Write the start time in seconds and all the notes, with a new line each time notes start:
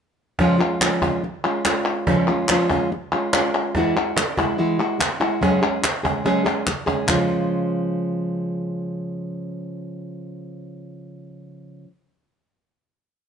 0.39 C#3 F3 G#3 C#4 F4, cajon bass, cajon slap
0.59 G#3 C#4 F4
0.81 F3 G#3 C#4 F4, cajon slap, clap
1.02 G#3 C#4 F4, cajon bass
1.23 muted nylon-string guitar stroke
1.44 G#3 C#4 F4
1.65 G#3 C#4 F4, cajon slap, clap
2.07 C#3 F3 G#3 C#4 F4, cajon bass
2.28 G#3 C#4 F4
2.48 F3 G#3 C#4 F4, cajon slap, clap
2.70 G#3 C#4 F4, cajon bass, clap
2.92 muted nylon-string guitar stroke, cajon slap
3.12 G#3 C#4 F4
3.33 G#3 C#4 F4, cajon slap, clap
3.55 clap
3.75 E3 G#3 E4 F#4, cajon bass, cajon slap
3.96 G#3 E4 F#4
4.17 muted nylon-string guitar stroke, cajon slap, clap
4.37 G#3 E4 F#4, cajon bass
4.58 E3 G#3 E4 F#4
4.79 G#3 E4 F#4
4.99 muted nylon-string guitar stroke, cajon slap, clap
5.20 G#3 E4 F#4, cajon slap
5.41 C#3 F#3 G#3 C#4 G#4, cajon bass, cajon slap
5.62 G#3 C#4 G#4
5.83 muted nylon-string guitar stroke, cajon slap, clap
6.03 G#3 C#4 G#4, cajon bass
6.24 C#3 F#3 G#3 C#4 G#4, cajon slap
6.45 G#3 C#4 G#4, cajon slap
6.67 muted nylon-string guitar stroke, cajon bass, clap
6.86 G#3 C#4 G#4, cajon bass
7.07 C#3 F3 G#3 C#4 F4, cajon bass, clap